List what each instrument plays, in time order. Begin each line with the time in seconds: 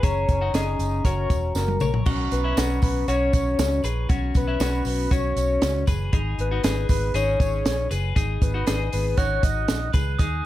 0.03 fingered electric bass F#1, clean electric guitar C#4 G#4, soft synth lead C#5, glockenspiel A#5, kick, closed hi-hat, tambourine
0.29 fingered electric bass F#1, kick, closed hi-hat, tambourine
0.41 clean electric guitar D#4 F#4
0.53 fingered electric bass F#1, clean electric guitar C#4 G#4, soft synth lead D#5, snare, closed hi-hat, tambourine
0.79 fingered electric bass F#1, closed hi-hat, tambourine
1.05 fingered electric bass F#1, clean electric guitar F#4 A#4, soft synth lead C#5, kick, closed hi-hat, tambourine
1.30 fingered electric bass E1, kick, closed hi-hat, tambourine
1.55 fingered electric bass F#1, soft synth lead A#4, snare, tambourine
1.68 high tom
1.80 fingered electric bass A#1, clean electric guitar A#4 C#5, mid tom, tambourine
1.94 floor tom
2.06 fingered electric bass B1, clean electric guitar C#4 F#4, glockenspiel C#6, kick, crash, tambourine
2.31 fingered electric bass B1, soft synth lead B4, hi-hat pedal, open hi-hat, tambourine
2.44 clean electric guitar C#4 E4
2.57 fingered electric bass B1, clean electric guitar C#4 F#4, snare, hi-hat pedal, open hi-hat, tambourine
2.82 fingered electric bass B1, soft synth lead B4, kick, hi-hat pedal, open hi-hat, tambourine
3.08 fingered electric bass B1, clean electric guitar C#4 F#4, soft synth lead C#5, hi-hat pedal, open hi-hat, tambourine
3.33 fingered electric bass B1, soft synth lead C#5, kick, hi-hat pedal, open hi-hat, tambourine
3.59 fingered electric bass C#2, snare, hi-hat pedal, open hi-hat, tambourine
3.84 fingered electric bass A#1, clean electric guitar G#4 B4, hi-hat pedal, open hi-hat, tambourine
4.09 fingered electric bass B1, clean electric guitar C#4 F#4, kick, hi-hat pedal, open hi-hat, tambourine
4.34 fingered electric bass B1, soft synth lead B4, kick, hi-hat pedal, open hi-hat, tambourine
4.48 clean electric guitar C#4 E4
4.60 fingered electric bass B1, clean electric guitar C#4 F#4, snare, hi-hat pedal, open hi-hat, tambourine
4.85 fingered electric bass B1, soft synth lead B4, hi-hat pedal, open hi-hat, tambourine
5.11 fingered electric bass B1, clean electric guitar C#4 F#4, soft synth lead C#5, kick, hi-hat pedal, open hi-hat, tambourine
5.36 fingered electric bass B1, soft synth lead C#5, hi-hat pedal, open hi-hat, tambourine
5.62 fingered electric bass C#2, snare, hi-hat pedal, open hi-hat, tambourine
5.87 fingered electric bass F#1, clean electric guitar G#4 B4, kick, hi-hat pedal, open hi-hat, tambourine
6.13 fingered electric bass G#1, clean electric guitar D#4 G#4, glockenspiel B5, kick, hi-hat pedal, open hi-hat
6.38 fingered electric bass G#1, soft synth lead B4, hi-hat pedal, open hi-hat
6.51 clean electric guitar D#4 F#4
6.63 fingered electric bass G#1, clean electric guitar D#4 G#4, snare, hi-hat pedal, open hi-hat, tambourine
6.89 fingered electric bass G#1, soft synth lead B4, kick, hi-hat pedal, open hi-hat, tambourine
7.14 fingered electric bass G#1, clean electric guitar D#4 G#4, soft synth lead C#5, hi-hat pedal, open hi-hat, tambourine
7.40 fingered electric bass G#1, soft synth lead C#5, kick, hi-hat pedal, open hi-hat, tambourine
7.65 fingered electric bass A#1, snare, hi-hat pedal, open hi-hat, tambourine
7.91 fingered electric bass F#1, clean electric guitar G#4 B4, hi-hat pedal, open hi-hat, tambourine
8.16 fingered electric bass G#1, clean electric guitar D#4 G#4, kick, hi-hat pedal, open hi-hat, tambourine
8.42 fingered electric bass G#1, soft synth lead B4, kick, hi-hat pedal, open hi-hat, tambourine
8.54 clean electric guitar D#4 F#4
8.67 fingered electric bass G#1, clean electric guitar D#4 G#4, snare, hi-hat pedal, open hi-hat, tambourine
8.92 fingered electric bass G#1, soft synth lead B4, hi-hat pedal, open hi-hat, tambourine
9.17 fingered electric bass G#1, clean electric guitar D#4 F#4, soft synth lead C#5, glockenspiel F#6, kick, hi-hat pedal, open hi-hat, tambourine
9.43 fingered electric bass G#1, soft synth lead D#5, kick, hi-hat pedal, open hi-hat, tambourine
9.68 fingered electric bass A#1, snare, hi-hat pedal, open hi-hat, tambourine
9.93 fingered electric bass C#2, clean electric guitar G#4 B4, kick, hi-hat pedal, open hi-hat, tambourine
10.19 fingered electric bass D#2, clean electric guitar D#4 G#4, glockenspiel D#6, kick, hi-hat pedal, open hi-hat, tambourine